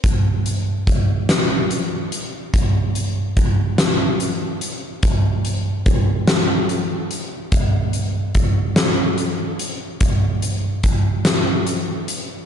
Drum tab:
HH |xxxxxx|xxxxxx|xxxxxx|xxxxxx|
SD |---o--|---o--|---o--|---o--|
BD |o-o---|o-o---|o-o---|o-o---|

HH |xxxxxx|
SD |---o--|
BD |o-o---|